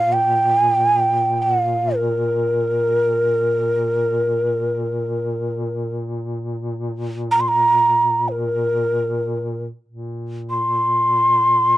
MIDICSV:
0, 0, Header, 1, 3, 480
1, 0, Start_track
1, 0, Tempo, 500000
1, 11305, End_track
2, 0, Start_track
2, 0, Title_t, "Shakuhachi"
2, 0, Program_c, 0, 77
2, 0, Note_on_c, 0, 77, 77
2, 123, Note_on_c, 0, 79, 88
2, 137, Note_off_c, 0, 77, 0
2, 1363, Note_on_c, 0, 78, 69
2, 1378, Note_off_c, 0, 79, 0
2, 1546, Note_off_c, 0, 78, 0
2, 1546, Note_on_c, 0, 77, 69
2, 1879, Note_on_c, 0, 70, 72
2, 1894, Note_off_c, 0, 77, 0
2, 5711, Note_off_c, 0, 70, 0
2, 7020, Note_on_c, 0, 82, 68
2, 7107, Note_on_c, 0, 84, 62
2, 7121, Note_off_c, 0, 82, 0
2, 7182, Note_on_c, 0, 82, 79
2, 7196, Note_off_c, 0, 84, 0
2, 7952, Note_on_c, 0, 72, 62
2, 7967, Note_off_c, 0, 82, 0
2, 7984, Note_on_c, 0, 70, 67
2, 7994, Note_off_c, 0, 72, 0
2, 9259, Note_off_c, 0, 70, 0
2, 10080, Note_on_c, 0, 84, 75
2, 11305, Note_off_c, 0, 84, 0
2, 11305, End_track
3, 0, Start_track
3, 0, Title_t, "Duduk"
3, 0, Program_c, 1, 69
3, 0, Note_on_c, 1, 46, 34
3, 9325, Note_off_c, 1, 46, 0
3, 9489, Note_on_c, 1, 46, 35
3, 11305, Note_off_c, 1, 46, 0
3, 11305, End_track
0, 0, End_of_file